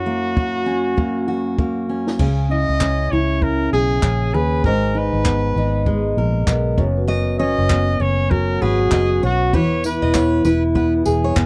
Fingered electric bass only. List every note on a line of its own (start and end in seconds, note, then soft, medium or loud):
2.19 2.64 C#2 medium
2.69 3.08 C#2 medium
3.12 3.69 C#2 medium
3.73 4.01 B1 medium
4.03 4.31 A#1 medium
4.34 4.62 D#2 medium
4.64 5.09 G#1 medium
5.13 5.52 G#1 medium
5.56 6.13 G#1 medium
6.17 6.45 A#1 medium
6.48 6.76 B1 medium
6.78 7.54 F#1 medium
7.58 7.97 F#1 loud
8.00 8.57 F#1 medium
8.62 8.90 G#1 medium
8.92 9.20 F#1 medium
9.23 9.53 B1 medium
9.53 9.98 E1 loud
10.02 10.42 E1 medium
10.45 11.02 E1 medium
11.07 11.35 E1 medium
11.37 11.46 F#1 medium